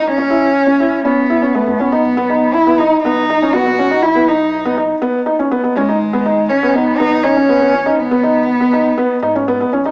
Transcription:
X:1
M:4/4
L:1/16
Q:1/4=121
K:Bmix
V:1 name="Cello"
C8 B,4 A,2 B,2- | B,4 E2 D2 D4 F4 | E2 D4 z8 G,2- | G,4 C2 B,2 D2 C6 |
B,12 z4 |]
V:2 name="Felt piano"
z C E2 z C E2 C2 E C B, B, C D | z B, D2 z B, D2 B,2 D C B, B, C D | z B, D2 z B, D2 B,2 D C B, B, C D | z B, D2 z B, D2 B,2 D C B, B, C D |
z B, D2 z B, D2 B,2 D C B, B, C D |]
V:3 name="Sub bass" clef=bass
F,,,6- F,,, z6 F,, C,, z | B,,,6- B,,, z B,,,6- B,,, z | B,,,6- B,,, z8 z | G,,,6- G,,, z G,,,6- G,,, z |
G,,,6- G,,, z3 G,,3 z B,,, z |]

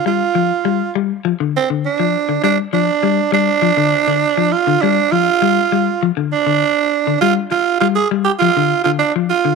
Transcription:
X:1
M:4/4
L:1/16
Q:1/4=101
K:Dphr
V:1 name="Tenor saxophone"
F6 z4 C2 D4 | D2 D4 D8 F2 | D2 F6 z2 D6 | F2 F2 F _A2 G F3 F D2 F2 |]
V:2 name="Clean electric guitar" clef=bass
G,2 F,2 G,2 G,2 F, D,2 D,2 F,2 D, | G,2 F,2 G,2 G,2 F, D,2 D,2 F,2 D, | G,2 F,2 G,2 G,2 F, D,2 D,2 z2 D, | G,2 z2 G,2 G,2 F, D,2 D,2 F,2 D, |]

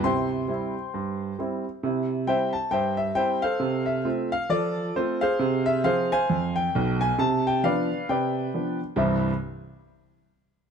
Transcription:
X:1
M:4/4
L:1/8
Q:"Swing" 1/4=134
K:C
V:1 name="Grand piano"
[cgc']6 z2 | z2 [ceg] a [ceg] e [ceg] [Acf]- | [Acf] e2 f [FAd]2 [FAc] [_Acf]- | [_Acf] e [Acf] [cf_a]2 g2 a |
a g [Bdf]2 [Bdg]3 z | [C,,G,,E,G,CEe] z6 z |]
V:2 name="Grand piano"
[C,E]2 [G,CE]2 G,,2 [G,CE]2 | [C,E]2 [G,CE]2 G,,2 [G,CE]2 | C,2 [A,CF]2 F,2 [A,C]2 | C,2 [F,CF]2 F,,2 [B,,,B,,]2 |
C,2 [F,B,D]2 C,2 [F,B,D]2 | z8 |]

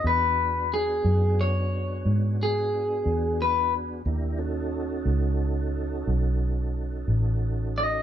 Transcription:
X:1
M:12/8
L:1/8
Q:3/8=60
K:Bmix
V:1 name="Clean electric guitar"
B2 G2 c3 G3 B z | z8 z3 d |]
V:2 name="Tonewheel organ"
[B,=DFG]12 | [=DE=G^A] [C^DF=A]8- [CDFA]3 |]
V:3 name="Fingered electric bass" clef=bass
E,,3 F,,3 G,,3 E,,3 | D,,3 C,,3 B,,,3 A,,,3 |]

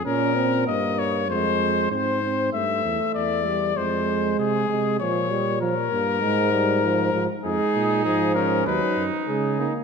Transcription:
X:1
M:4/4
L:1/8
Q:1/4=98
K:Fphr
V:1 name="Trumpet"
B2 e d c2 c2 | =e2 =d2 c2 A2 | d2 B6 | [K:C#mix] G2 G A B z G2 |]
V:2 name="Trumpet"
z8 | z8 | z8 | [K:C#mix] D3 C D3 D |]
V:3 name="Trombone" clef=bass
D C B,2 A,2 C C | =A,3 =G, _A,3 A, | F, =G, F, B, A, G, F, F, | [K:C#mix] G,2 E,2 F, z G, A, |]
V:4 name="Bass trombone" clef=bass
B,,2 =G,,2 F,,2 A,,2 | =G,, =E,, E,,2 F,,2 C, C, | B,,3 =G,, A,,3 A,, | [K:C#mix] E,, A,, G,,2 D,, F,, C, z |]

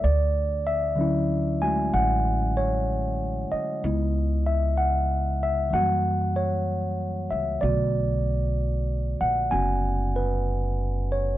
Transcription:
X:1
M:4/4
L:1/8
Q:"Swing" 1/4=63
K:Dlyd
V:1 name="Tine electric piano"
d e2 g f c2 ^d- | ^d e f e f c2 e | d3 f g B2 c |]
V:2 name="Tine electric piano"
z2 [D,F,CE] [G,A,F]4- [G,A,F] | [C,G,B,E]4 [E,=G,^A,F]4 | [D,A,B,F]4 [B,CF]4 |]
V:3 name="Upright bass" clef=bass
D,,4 A,,,3 z | C,,4 F,,3 C,, | B,,,3 ^A,,, F,,,4 |]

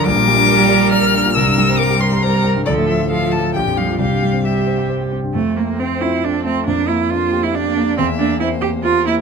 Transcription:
X:1
M:3/4
L:1/16
Q:1/4=137
K:F
V:1 name="Violin"
d'8 f'4 | e'4 d'2 c'2 b2 z2 | d2 e2 f2 a2 g2 f2 | f4 e4 z4 |
z4 c4 A4 | B4 c4 d4 | e4 c4 B4 |]
V:2 name="Viola"
B12 | B8 B4 | A4 A4 G4 | G4 G6 z2 |
C12 | B,12- | B,12 |]
V:3 name="Cello"
G,12 | G,8 G,4 | F,4 F,4 F,4 | G,4 G,6 z2 |
A,2 B,2 C2 E2 D2 C2 | D2 E2 F3 E D4 | C2 D2 E2 G2 F2 E2 |]
V:4 name="Grand piano"
B,,, B,, G, D B G d b d B D B,, | C,, G,, G, C B G c b c B C G,, | D,, A,, F, F A F f a B,,, F,, G, F | C,, G,, G, C G C c g c G C G,, |
F,,2 A,2 C2 F2 C2 A,2 | F,,2 B,2 D2 G2 D2 B,2 | E,,2 B,2 C2 G2 C2 B,2 |]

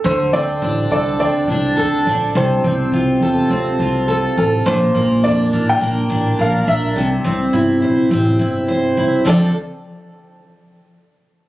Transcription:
X:1
M:4/4
L:1/16
Q:"Swing 16ths" 1/4=104
K:Dm
V:1 name="Upright piano"
c2 d4 d2 d8 | c6 z8 A2 | c4 d3 g4- g f2 e2- | e12 z4 |
d2 z12 z2 |]
V:2 name="Steel-string acoustic guitar"
D,2 C2 D2 A2 C2 D2 A2 D2 | C,2 C2 F2 A2 C2 F2 A2 F2 | B,,2 B,2 D2 B2 B,2 D2 B2 D2 | C,2 C2 E2 c2 C2 E2 c2 E2 |
[D,F,CDA]2 z12 z2 |]
V:3 name="Upright bass" clef=bass
D,,2 D,,2 A,,,2 C,,2 D,,2 C,,2 D,,2 B,,,2 | C,,2 C,,2 C,,2 E,,2 D,,2 C,,4 A,,,2 | B,,,2 B,,,2 F,,2 A,,,2 B,,,2 A,,,2 B,,,2 B,,,2 | C,,2 C,,2 G,,,2 B,,,2 A,,,2 G,,,4 C,,2 |
D,,2 z12 z2 |]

